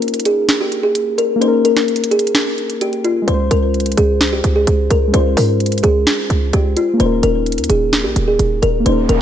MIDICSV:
0, 0, Header, 1, 6, 480
1, 0, Start_track
1, 0, Tempo, 465116
1, 1462, Time_signature, 4, 2, 24, 8
1, 9513, End_track
2, 0, Start_track
2, 0, Title_t, "Kalimba"
2, 0, Program_c, 0, 108
2, 266, Note_on_c, 0, 68, 77
2, 603, Note_off_c, 0, 68, 0
2, 627, Note_on_c, 0, 67, 79
2, 826, Note_off_c, 0, 67, 0
2, 861, Note_on_c, 0, 68, 78
2, 1200, Note_off_c, 0, 68, 0
2, 1218, Note_on_c, 0, 70, 83
2, 1421, Note_off_c, 0, 70, 0
2, 1459, Note_on_c, 0, 72, 98
2, 1662, Note_off_c, 0, 72, 0
2, 1700, Note_on_c, 0, 70, 78
2, 1902, Note_off_c, 0, 70, 0
2, 2180, Note_on_c, 0, 68, 81
2, 2860, Note_off_c, 0, 68, 0
2, 2905, Note_on_c, 0, 67, 89
2, 3105, Note_off_c, 0, 67, 0
2, 3142, Note_on_c, 0, 65, 78
2, 3344, Note_off_c, 0, 65, 0
2, 3382, Note_on_c, 0, 72, 108
2, 3584, Note_off_c, 0, 72, 0
2, 3622, Note_on_c, 0, 70, 80
2, 3823, Note_off_c, 0, 70, 0
2, 4104, Note_on_c, 0, 68, 76
2, 4442, Note_off_c, 0, 68, 0
2, 4464, Note_on_c, 0, 67, 78
2, 4665, Note_off_c, 0, 67, 0
2, 4704, Note_on_c, 0, 68, 79
2, 5041, Note_off_c, 0, 68, 0
2, 5065, Note_on_c, 0, 70, 79
2, 5265, Note_off_c, 0, 70, 0
2, 5301, Note_on_c, 0, 72, 101
2, 5503, Note_off_c, 0, 72, 0
2, 5541, Note_on_c, 0, 70, 80
2, 5743, Note_off_c, 0, 70, 0
2, 6017, Note_on_c, 0, 68, 80
2, 6698, Note_off_c, 0, 68, 0
2, 6744, Note_on_c, 0, 67, 81
2, 6945, Note_off_c, 0, 67, 0
2, 6984, Note_on_c, 0, 65, 79
2, 7185, Note_off_c, 0, 65, 0
2, 7224, Note_on_c, 0, 72, 98
2, 7425, Note_off_c, 0, 72, 0
2, 7462, Note_on_c, 0, 70, 86
2, 7664, Note_off_c, 0, 70, 0
2, 7940, Note_on_c, 0, 68, 72
2, 8279, Note_off_c, 0, 68, 0
2, 8298, Note_on_c, 0, 67, 76
2, 8501, Note_off_c, 0, 67, 0
2, 8541, Note_on_c, 0, 68, 74
2, 8880, Note_off_c, 0, 68, 0
2, 8899, Note_on_c, 0, 70, 85
2, 9102, Note_off_c, 0, 70, 0
2, 9145, Note_on_c, 0, 72, 95
2, 9345, Note_off_c, 0, 72, 0
2, 9381, Note_on_c, 0, 70, 81
2, 9513, Note_off_c, 0, 70, 0
2, 9513, End_track
3, 0, Start_track
3, 0, Title_t, "Synth keys"
3, 0, Program_c, 1, 88
3, 0, Control_c, 1, 64, 127
3, 0, Note_on_c, 1, 58, 68
3, 0, Note_on_c, 1, 61, 60
3, 0, Note_on_c, 1, 63, 63
3, 0, Note_on_c, 1, 70, 76
3, 1390, Note_off_c, 1, 58, 0
3, 1402, Note_on_c, 1, 58, 75
3, 1415, Note_off_c, 1, 61, 0
3, 1436, Note_off_c, 1, 63, 0
3, 1443, Note_on_c, 1, 61, 60
3, 1457, Note_off_c, 1, 70, 0
3, 1484, Note_on_c, 1, 63, 63
3, 1525, Note_on_c, 1, 70, 76
3, 3313, Note_off_c, 1, 58, 0
3, 3324, Note_on_c, 1, 56, 70
3, 3334, Note_off_c, 1, 61, 0
3, 3355, Note_off_c, 1, 63, 0
3, 3365, Note_on_c, 1, 61, 59
3, 3376, Note_off_c, 1, 70, 0
3, 3395, Control_c, 1, 64, 0
3, 3405, Note_on_c, 1, 65, 60
3, 3446, Note_on_c, 1, 72, 80
3, 3578, Control_c, 1, 64, 127
3, 5228, Note_off_c, 1, 56, 0
3, 5241, Note_on_c, 1, 56, 67
3, 5255, Note_off_c, 1, 61, 0
3, 5275, Note_off_c, 1, 65, 0
3, 5282, Note_on_c, 1, 61, 62
3, 5297, Note_off_c, 1, 72, 0
3, 5322, Note_on_c, 1, 65, 64
3, 5364, Note_on_c, 1, 72, 75
3, 7152, Note_off_c, 1, 56, 0
3, 7159, Note_on_c, 1, 58, 68
3, 7173, Note_off_c, 1, 61, 0
3, 7194, Note_off_c, 1, 65, 0
3, 7199, Note_on_c, 1, 61, 69
3, 7215, Note_off_c, 1, 72, 0
3, 7237, Control_c, 1, 64, 0
3, 7241, Note_on_c, 1, 63, 61
3, 7281, Note_on_c, 1, 70, 76
3, 7396, Control_c, 1, 64, 127
3, 9071, Note_off_c, 1, 58, 0
3, 9083, Note_on_c, 1, 58, 66
3, 9092, Note_off_c, 1, 61, 0
3, 9113, Note_off_c, 1, 63, 0
3, 9124, Note_on_c, 1, 61, 58
3, 9134, Note_off_c, 1, 70, 0
3, 9165, Note_on_c, 1, 63, 71
3, 9206, Note_on_c, 1, 70, 72
3, 9513, Note_off_c, 1, 58, 0
3, 9513, Note_off_c, 1, 61, 0
3, 9513, Note_off_c, 1, 63, 0
3, 9513, Note_off_c, 1, 70, 0
3, 9513, End_track
4, 0, Start_track
4, 0, Title_t, "808-style bass"
4, 0, Program_c, 2, 38
4, 3382, Note_on_c, 2, 37, 105
4, 3612, Note_off_c, 2, 37, 0
4, 3622, Note_on_c, 2, 37, 104
4, 4083, Note_off_c, 2, 37, 0
4, 4102, Note_on_c, 2, 37, 104
4, 4563, Note_off_c, 2, 37, 0
4, 4582, Note_on_c, 2, 37, 102
4, 4813, Note_off_c, 2, 37, 0
4, 4822, Note_on_c, 2, 37, 107
4, 5052, Note_off_c, 2, 37, 0
4, 5062, Note_on_c, 2, 37, 107
4, 5292, Note_off_c, 2, 37, 0
4, 5302, Note_on_c, 2, 37, 108
4, 5533, Note_off_c, 2, 37, 0
4, 5542, Note_on_c, 2, 44, 106
4, 6003, Note_off_c, 2, 44, 0
4, 6022, Note_on_c, 2, 37, 104
4, 6252, Note_off_c, 2, 37, 0
4, 6502, Note_on_c, 2, 37, 99
4, 6733, Note_off_c, 2, 37, 0
4, 6742, Note_on_c, 2, 37, 107
4, 6973, Note_off_c, 2, 37, 0
4, 7222, Note_on_c, 2, 27, 110
4, 7452, Note_off_c, 2, 27, 0
4, 7462, Note_on_c, 2, 27, 107
4, 7822, Note_on_c, 2, 39, 100
4, 7838, Note_off_c, 2, 27, 0
4, 7936, Note_off_c, 2, 39, 0
4, 7942, Note_on_c, 2, 27, 107
4, 8301, Note_on_c, 2, 34, 98
4, 8317, Note_off_c, 2, 27, 0
4, 8416, Note_off_c, 2, 34, 0
4, 8422, Note_on_c, 2, 27, 104
4, 8652, Note_off_c, 2, 27, 0
4, 8662, Note_on_c, 2, 27, 108
4, 8892, Note_off_c, 2, 27, 0
4, 8902, Note_on_c, 2, 27, 107
4, 9133, Note_off_c, 2, 27, 0
4, 9142, Note_on_c, 2, 27, 105
4, 9372, Note_off_c, 2, 27, 0
4, 9382, Note_on_c, 2, 27, 108
4, 9513, Note_off_c, 2, 27, 0
4, 9513, End_track
5, 0, Start_track
5, 0, Title_t, "Riser"
5, 0, Program_c, 3, 103
5, 9142, Note_on_c, 3, 60, 90
5, 9513, Note_off_c, 3, 60, 0
5, 9513, End_track
6, 0, Start_track
6, 0, Title_t, "Drums"
6, 22, Note_on_c, 9, 42, 50
6, 82, Note_off_c, 9, 42, 0
6, 82, Note_on_c, 9, 42, 60
6, 142, Note_off_c, 9, 42, 0
6, 142, Note_on_c, 9, 42, 69
6, 202, Note_off_c, 9, 42, 0
6, 202, Note_on_c, 9, 42, 82
6, 262, Note_off_c, 9, 42, 0
6, 262, Note_on_c, 9, 42, 85
6, 365, Note_off_c, 9, 42, 0
6, 502, Note_on_c, 9, 38, 113
6, 502, Note_on_c, 9, 42, 72
6, 605, Note_off_c, 9, 38, 0
6, 605, Note_off_c, 9, 42, 0
6, 742, Note_on_c, 9, 42, 70
6, 845, Note_off_c, 9, 42, 0
6, 982, Note_on_c, 9, 42, 91
6, 1085, Note_off_c, 9, 42, 0
6, 1222, Note_on_c, 9, 42, 71
6, 1325, Note_off_c, 9, 42, 0
6, 1462, Note_on_c, 9, 42, 76
6, 1565, Note_off_c, 9, 42, 0
6, 1702, Note_on_c, 9, 42, 88
6, 1805, Note_off_c, 9, 42, 0
6, 1822, Note_on_c, 9, 38, 64
6, 1926, Note_off_c, 9, 38, 0
6, 1942, Note_on_c, 9, 42, 47
6, 2022, Note_off_c, 9, 42, 0
6, 2022, Note_on_c, 9, 42, 65
6, 2102, Note_off_c, 9, 42, 0
6, 2102, Note_on_c, 9, 42, 81
6, 2182, Note_off_c, 9, 42, 0
6, 2182, Note_on_c, 9, 42, 74
6, 2262, Note_off_c, 9, 42, 0
6, 2262, Note_on_c, 9, 42, 71
6, 2342, Note_off_c, 9, 42, 0
6, 2342, Note_on_c, 9, 42, 74
6, 2422, Note_off_c, 9, 42, 0
6, 2422, Note_on_c, 9, 38, 112
6, 2422, Note_on_c, 9, 42, 72
6, 2525, Note_off_c, 9, 38, 0
6, 2525, Note_off_c, 9, 42, 0
6, 2662, Note_on_c, 9, 42, 45
6, 2765, Note_off_c, 9, 42, 0
6, 2782, Note_on_c, 9, 42, 74
6, 2885, Note_off_c, 9, 42, 0
6, 2902, Note_on_c, 9, 42, 86
6, 3005, Note_off_c, 9, 42, 0
6, 3022, Note_on_c, 9, 42, 53
6, 3125, Note_off_c, 9, 42, 0
6, 3142, Note_on_c, 9, 42, 74
6, 3245, Note_off_c, 9, 42, 0
6, 3382, Note_on_c, 9, 42, 78
6, 3485, Note_off_c, 9, 42, 0
6, 3622, Note_on_c, 9, 42, 87
6, 3725, Note_off_c, 9, 42, 0
6, 3862, Note_on_c, 9, 42, 48
6, 3922, Note_off_c, 9, 42, 0
6, 3922, Note_on_c, 9, 42, 61
6, 3982, Note_off_c, 9, 42, 0
6, 3982, Note_on_c, 9, 42, 69
6, 4042, Note_off_c, 9, 42, 0
6, 4042, Note_on_c, 9, 42, 81
6, 4102, Note_off_c, 9, 42, 0
6, 4102, Note_on_c, 9, 42, 85
6, 4205, Note_off_c, 9, 42, 0
6, 4342, Note_on_c, 9, 38, 115
6, 4342, Note_on_c, 9, 42, 72
6, 4445, Note_off_c, 9, 38, 0
6, 4445, Note_off_c, 9, 42, 0
6, 4582, Note_on_c, 9, 42, 70
6, 4685, Note_off_c, 9, 42, 0
6, 4822, Note_on_c, 9, 42, 89
6, 4925, Note_off_c, 9, 42, 0
6, 5062, Note_on_c, 9, 42, 73
6, 5165, Note_off_c, 9, 42, 0
6, 5302, Note_on_c, 9, 42, 81
6, 5405, Note_off_c, 9, 42, 0
6, 5542, Note_on_c, 9, 46, 89
6, 5645, Note_off_c, 9, 46, 0
6, 5782, Note_on_c, 9, 42, 67
6, 5842, Note_off_c, 9, 42, 0
6, 5842, Note_on_c, 9, 42, 65
6, 5902, Note_off_c, 9, 42, 0
6, 5902, Note_on_c, 9, 42, 67
6, 5962, Note_off_c, 9, 42, 0
6, 5962, Note_on_c, 9, 42, 65
6, 6022, Note_off_c, 9, 42, 0
6, 6022, Note_on_c, 9, 42, 81
6, 6125, Note_off_c, 9, 42, 0
6, 6262, Note_on_c, 9, 38, 115
6, 6262, Note_on_c, 9, 42, 72
6, 6365, Note_off_c, 9, 38, 0
6, 6365, Note_off_c, 9, 42, 0
6, 6502, Note_on_c, 9, 42, 72
6, 6605, Note_off_c, 9, 42, 0
6, 6742, Note_on_c, 9, 42, 83
6, 6845, Note_off_c, 9, 42, 0
6, 6982, Note_on_c, 9, 42, 73
6, 7085, Note_off_c, 9, 42, 0
6, 7222, Note_on_c, 9, 42, 78
6, 7326, Note_off_c, 9, 42, 0
6, 7462, Note_on_c, 9, 42, 89
6, 7565, Note_off_c, 9, 42, 0
6, 7702, Note_on_c, 9, 42, 49
6, 7762, Note_off_c, 9, 42, 0
6, 7762, Note_on_c, 9, 42, 61
6, 7822, Note_off_c, 9, 42, 0
6, 7822, Note_on_c, 9, 42, 72
6, 7882, Note_off_c, 9, 42, 0
6, 7882, Note_on_c, 9, 42, 84
6, 7942, Note_off_c, 9, 42, 0
6, 7942, Note_on_c, 9, 42, 86
6, 8045, Note_off_c, 9, 42, 0
6, 8182, Note_on_c, 9, 38, 111
6, 8182, Note_on_c, 9, 42, 72
6, 8285, Note_off_c, 9, 38, 0
6, 8285, Note_off_c, 9, 42, 0
6, 8422, Note_on_c, 9, 42, 74
6, 8525, Note_off_c, 9, 42, 0
6, 8662, Note_on_c, 9, 42, 89
6, 8765, Note_off_c, 9, 42, 0
6, 8902, Note_on_c, 9, 42, 70
6, 9005, Note_off_c, 9, 42, 0
6, 9142, Note_on_c, 9, 42, 78
6, 9245, Note_off_c, 9, 42, 0
6, 9382, Note_on_c, 9, 42, 87
6, 9486, Note_off_c, 9, 42, 0
6, 9513, End_track
0, 0, End_of_file